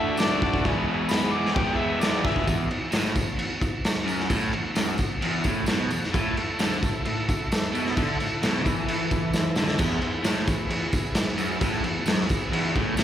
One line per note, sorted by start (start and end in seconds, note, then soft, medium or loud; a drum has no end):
0.00 0.17 D3 loud
0.00 0.19 A3 medium
0.00 0.20 D4 medium
0.00 0.16 F#4 medium
0.00 0.20 F#4 medium
0.00 0.17 A4 medium
0.00 0.18 D5 medium
0.00 0.21 E5 loud
0.17 0.63 D3 medium
0.17 0.43 A3 medium
0.17 0.42 D4 medium
0.17 0.40 F#4 loud
0.17 0.40 A4 medium
0.17 0.41 D5 loud
0.17 0.64 D5 loud
0.17 snare loud
0.17 tambourine loud
0.17 crash medium
0.22 0.40 F#4 medium
0.42 0.65 A3 medium
0.42 0.64 D4 medium
0.42 0.63 F#4 medium
0.42 0.64 F#4 medium
0.42 0.64 A4 medium
0.42 0.64 D5 medium
0.42 kick medium
0.54 kick medium
0.65 1.11 E2 loud
0.65 1.11 B2 loud
0.65 0.89 E3 loud
0.65 0.88 G#3 loud
0.65 0.87 B3 medium
0.65 0.86 G#4 loud
0.65 0.87 B4 loud
0.65 0.87 E5 loud
0.65 kick loud
0.65 crash medium
0.87 1.09 E3 medium
0.87 1.09 G#3 medium
0.87 1.11 B3 medium
0.87 1.12 G#4 medium
0.87 1.09 G#4 loud
0.87 1.10 B4 loud
0.87 1.09 E5 loud
1.09 1.54 E3 medium
1.09 1.54 G#3 medium
1.09 1.55 B3 medium
1.09 1.32 G#4 medium
1.09 1.32 B4 medium
1.09 1.32 E5 medium
1.09 1.35 B5 loud
1.09 snare loud
1.09 tambourine loud
1.09 crash medium
1.13 1.55 G#4 loud
1.33 1.55 G#4 medium
1.33 1.55 B4 medium
1.33 1.55 E5 medium
1.33 1.54 D6 medium
1.46 snare soft
1.53 2.00 E2 loud
1.53 2.01 B2 loud
1.53 1.78 E3 loud
1.53 1.77 G#3 loud
1.53 1.76 B3 loud
1.53 1.75 G#4 loud
1.53 1.79 G5 medium
1.53 kick loud
1.53 crash medium
1.58 1.78 G#4 medium
1.58 1.79 B4 medium
1.58 1.79 E5 medium
1.77 1.99 E3 medium
1.77 2.00 G#3 medium
1.77 2.01 B3 medium
1.77 2.01 G#4 medium
1.77 2.03 E5 loud
1.82 2.00 G#4 medium
1.82 2.00 B4 medium
1.82 2.01 E5 medium
2.00 2.26 E3 medium
2.00 2.25 G#3 medium
2.00 2.24 B3 medium
2.00 2.22 G#4 loud
2.00 2.23 G#4 medium
2.00 2.23 B4 medium
2.00 2.27 D5 loud
2.00 2.23 E5 loud
2.00 snare loud
2.00 tambourine loud
2.00 crash medium
2.23 2.47 E3 medium
2.23 2.47 G#3 medium
2.23 2.46 B3 medium
2.23 2.45 G#4 medium
2.23 2.46 G#4 medium
2.23 2.46 B4 medium
2.23 2.47 E5 loud
2.23 2.47 E5 medium
2.23 kick medium
2.23 snare soft
2.36 kick medium
2.47 2.69 E2 loud
2.47 kick loud
2.47 tambourine medium
2.47 crash medium
2.71 muted overdriven electric guitar stroke medium
2.71 crash medium
2.92 3.15 A2 loud
2.92 snare loud
2.92 tambourine loud
2.92 crash medium
3.05 snare soft
3.15 3.34 E2 medium
3.15 kick medium
3.15 tambourine medium
3.15 crash medium
3.37 3.56 E2 medium
3.37 crash medium
3.61 kick medium
3.61 tambourine medium
3.61 crash medium
3.85 snare loud
3.85 tambourine loud
3.85 crash medium
4.05 4.28 F#2 loud
4.05 tambourine medium
4.05 crash medium
4.20 snare soft
4.29 4.52 A2 loud
4.29 kick loud
4.29 tambourine medium
4.29 crash medium
4.52 4.71 E2 medium
4.52 crash medium
4.75 4.98 F#2 loud
4.75 snare loud
4.75 tambourine loud
4.75 crash medium
4.98 muted overdriven electric guitar stroke medium
4.98 kick medium
4.98 tambourine medium
4.98 crash medium
5.22 5.44 E2 loud
5.22 crash medium
5.44 5.67 A2 loud
5.44 kick medium
5.44 tambourine medium
5.44 crash medium
5.66 5.90 B2 loud
5.66 snare loud
5.66 tambourine loud
5.66 crash medium
5.90 6.09 E2 medium
5.90 tambourine medium
5.90 crash medium
6.04 snare soft
6.12 6.35 A2 loud
6.12 6.34 E4 loud
6.12 6.35 A4 loud
6.12 6.35 E5 loud
6.12 kick loud
6.12 tambourine medium
6.12 crash medium
6.36 6.55 E4 medium
6.36 6.56 A4 medium
6.36 6.57 E5 loud
6.36 muted overdriven electric guitar stroke medium
6.36 crash medium
6.56 6.81 D3 loud
6.56 6.79 E4 medium
6.56 6.79 A4 medium
6.56 6.80 E5 medium
6.56 tambourine loud
6.56 crash medium
6.60 snare loud
6.72 snare soft
6.80 7.01 A2 medium
6.80 7.02 E4 medium
6.80 7.03 A4 medium
6.80 7.03 E5 loud
6.80 kick loud
6.80 tambourine medium
6.80 crash medium
7.04 7.24 A2 medium
7.04 7.25 E4 loud
7.04 7.26 A4 loud
7.04 7.26 E5 loud
7.04 crash medium
7.26 7.48 E4 medium
7.26 7.49 A4 medium
7.26 7.49 E5 loud
7.26 kick medium
7.26 tambourine medium
7.26 crash medium
7.50 7.72 E4 medium
7.50 7.72 A4 medium
7.50 7.73 E5 loud
7.50 snare loud
7.50 tambourine loud
7.50 crash medium
7.73 7.96 B2 loud
7.73 7.92 E4 medium
7.73 7.92 A4 medium
7.73 7.94 E5 medium
7.73 tambourine medium
7.73 crash medium
7.86 snare soft
7.93 8.19 D3 loud
7.93 8.16 E4 loud
7.93 8.16 A4 loud
7.93 8.17 E5 loud
7.93 kick loud
7.93 tambourine medium
7.93 crash medium
8.18 8.38 A2 medium
8.18 8.39 E4 medium
8.18 8.39 A4 medium
8.18 8.41 E5 loud
8.18 tambourine soft
8.18 crash medium
8.40 8.64 B2 loud
8.40 8.63 E4 medium
8.40 8.63 A4 medium
8.40 8.63 E5 medium
8.40 snare loud
8.40 tambourine medium
8.40 crash medium
8.55 snare soft
8.64 9.55 E3 loud
8.64 8.85 E4 medium
8.64 8.87 A4 medium
8.64 8.86 E5 medium
8.64 kick medium
8.64 tambourine medium
8.64 crash medium
8.86 9.09 E4 loud
8.86 9.10 A4 loud
8.86 9.09 E5 loud
8.86 tambourine soft
8.86 crash medium
9.11 9.32 E4 medium
9.11 9.33 A4 medium
9.11 9.33 E5 loud
9.11 kick medium
9.11 tambourine medium
9.11 crash medium
9.33 9.56 E4 medium
9.33 9.56 A4 medium
9.33 9.56 E5 loud
9.33 snare medium
9.33 tambourine loud
9.56 9.79 D3 loud
9.56 9.79 E4 medium
9.56 9.80 A4 medium
9.56 snare loud
9.56 tambourine medium
9.60 9.80 E5 medium
9.68 snare medium
9.78 10.01 E2 loud
9.78 10.01 G#4 loud
9.78 10.02 B4 loud
9.78 kick loud
9.78 crash loud
9.78 tambourine medium
9.78 crash medium
9.82 10.02 E5 loud
10.02 10.24 G#4 medium
10.02 10.25 B4 medium
10.02 10.25 E5 loud
10.02 muted overdriven electric guitar stroke medium
10.02 crash medium
10.24 10.47 A2 loud
10.24 snare loud
10.24 tambourine loud
10.24 crash medium
10.28 10.47 G#4 medium
10.28 10.47 B4 medium
10.28 10.48 E5 medium
10.37 snare soft
10.47 10.66 E2 medium
10.47 10.68 G#4 medium
10.47 10.70 B4 medium
10.47 10.70 E5 loud
10.47 kick medium
10.47 tambourine medium
10.47 crash medium
10.69 10.89 E2 medium
10.69 10.92 G#4 loud
10.69 10.92 B4 loud
10.69 10.92 E5 loud
10.69 crash medium
10.93 11.15 G#4 medium
10.93 11.15 B4 medium
10.93 11.16 E5 loud
10.93 kick medium
10.93 tambourine medium
10.93 crash medium
11.15 11.38 G#4 medium
11.15 11.37 B4 medium
11.15 11.38 E5 loud
11.15 snare loud
11.15 tambourine loud
11.15 crash loud
11.37 11.60 F#2 loud
11.37 11.57 G#4 medium
11.37 11.59 B4 medium
11.37 11.60 E5 medium
11.37 tambourine medium
11.37 crash medium
11.59 11.83 A2 loud
11.59 11.81 G#4 loud
11.59 11.82 B4 loud
11.59 11.82 E5 loud
11.59 kick loud
11.59 tambourine medium
11.59 crash medium
11.83 12.02 E2 medium
11.83 12.04 G#4 medium
11.83 12.04 B4 medium
11.83 12.05 E5 loud
11.83 crash medium
12.05 12.28 F#2 loud
12.05 12.25 G#4 medium
12.05 12.27 B4 medium
12.05 12.26 E5 medium
12.05 snare loud
12.05 tambourine loud
12.05 crash medium
12.20 snare soft
12.26 12.50 G#4 medium
12.26 12.50 B4 medium
12.26 12.50 E5 loud
12.26 muted overdriven electric guitar stroke medium
12.26 tambourine medium
12.30 kick medium
12.30 crash medium
12.51 12.74 E2 loud
12.51 12.70 G#4 loud
12.51 12.71 B4 loud
12.51 12.72 E5 loud
12.51 crash medium
12.71 12.94 G#4 medium
12.71 12.94 B4 medium
12.71 12.94 E5 loud
12.76 12.97 A2 loud
12.76 kick medium
12.76 crash medium
12.95 13.04 B2 loud
12.95 13.04 G#4 medium
12.95 13.04 B4 medium
12.95 13.04 E5 loud
12.95 snare loud
12.95 tambourine loud
12.95 crash medium